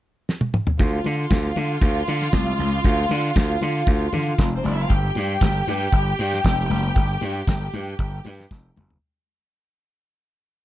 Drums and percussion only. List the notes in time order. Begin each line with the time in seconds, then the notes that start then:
0.29 snare
0.41 high tom
0.54 mid tom
0.67 floor tom
0.79 kick, closed hi-hat, muted conga
1.04 open hi-hat, muted conga
1.19 closed hi-hat
1.30 kick, snare, closed hi-hat, tambourine, high conga
1.56 open hi-hat, muted conga
1.69 closed hi-hat
1.81 kick, closed hi-hat
2.08 open hi-hat, muted conga
2.20 snare, closed hi-hat
2.32 kick, snare, closed hi-hat, tambourine, high conga
2.59 open hi-hat, high conga
2.72 closed hi-hat
2.84 kick, closed hi-hat, muted conga
3.09 open hi-hat, muted conga
3.24 closed hi-hat
3.36 kick, snare, closed hi-hat, tambourine, high conga
3.61 open hi-hat, muted conga
3.75 closed hi-hat
3.87 kick, closed hi-hat
4.13 open hi-hat, muted conga, low conga
4.26 closed hi-hat
4.38 kick, snare, closed hi-hat, tambourine, high conga
4.64 open hi-hat, high conga
4.78 closed hi-hat
4.90 kick, closed hi-hat, muted conga
5.15 open hi-hat, muted conga
5.29 closed hi-hat
5.41 kick, snare, closed hi-hat, tambourine, high conga
5.67 open hi-hat, muted conga
5.81 closed hi-hat
5.92 kick, closed hi-hat
6.19 open hi-hat
6.32 snare, closed hi-hat
6.44 kick, snare, closed hi-hat, tambourine, high conga
6.70 open hi-hat, high conga
6.83 closed hi-hat
6.96 kick, closed hi-hat, muted conga
7.21 open hi-hat, muted conga
7.35 closed hi-hat
7.47 kick, snare, closed hi-hat, tambourine, high conga
7.73 open hi-hat, muted conga
7.87 closed hi-hat
7.99 kick, closed hi-hat
8.25 open hi-hat, muted conga
8.39 snare, closed hi-hat
8.51 kick, snare, tambourine, high conga
8.76 mid tom, high conga
8.90 floor tom